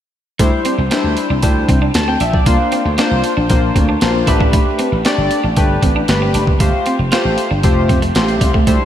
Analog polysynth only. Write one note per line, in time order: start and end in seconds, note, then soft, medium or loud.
0.39 0.74 G3 medium
0.39 0.74 D4 medium
0.39 0.74 E4 medium
0.39 0.74 C5 loud
0.91 1.26 G3 medium
0.91 1.26 D4 medium
0.91 1.26 E4 medium
0.91 1.26 C5 medium
1.42 1.77 G3 medium
1.42 1.77 D4 medium
1.42 1.78 E4 medium
1.42 1.78 C5 medium
1.95 2.07 A5 medium
2.08 2.20 G5 medium
2.21 2.33 E5 medium
2.34 2.58 D5 medium
2.46 2.81 A#3 medium
2.46 2.81 D4 medium
2.46 2.81 F4 medium
2.46 2.81 C5 loud
2.98 3.33 A#3 medium
2.98 3.33 D4 medium
2.98 3.33 F4 medium
2.98 3.33 C5 loud
3.50 3.84 A#3 medium
3.50 3.84 D4 medium
3.50 3.85 F4 medium
3.50 3.85 C5 medium
4.01 4.27 A#3 medium
4.01 4.26 D4 medium
4.01 4.28 F4 medium
4.01 4.28 C5 medium
4.27 4.90 A3 medium
4.27 4.90 D4 medium
4.27 4.90 G4 medium
4.27 4.90 B4 loud
5.05 5.40 A3 loud
5.05 5.40 D4 medium
5.05 5.40 G4 medium
5.05 5.40 D5 loud
5.57 5.91 A3 medium
5.57 5.91 D4 medium
5.57 5.92 G4 medium
5.57 5.92 B4 loud
6.08 6.43 A3 medium
6.08 6.43 D4 medium
6.08 6.43 G4 medium
6.08 6.43 B4 medium
6.60 6.95 A3 medium
6.60 6.95 F4 medium
6.60 6.95 G4 medium
6.60 6.95 C5 loud
7.12 7.46 A3 medium
7.12 7.47 F4 medium
7.12 7.47 G4 medium
7.12 7.47 C5 loud
7.64 7.98 A3 medium
7.64 7.98 F4 medium
7.64 7.99 G4 medium
7.64 7.99 C5 loud
8.15 8.50 A3 medium
8.15 8.50 F4 medium
8.15 8.50 G4 medium
8.15 8.50 C5 medium
8.67 8.85 G3 medium
8.67 8.85 D4 medium
8.67 8.85 E4 medium
8.67 8.85 C5 loud